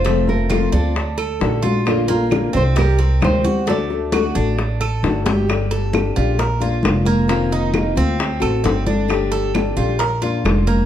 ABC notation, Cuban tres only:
X:1
M:4/4
L:1/8
Q:1/4=133
K:Gm
V:1 name="Cuban tres"
A,2 F D2 A2 F- | F B,2 C G, C2 ^F | A,2 ^F D2 A2 G | z A2 F B F2 B, |
B, E2 C2 A C D- | D A2 F B F2 B, |]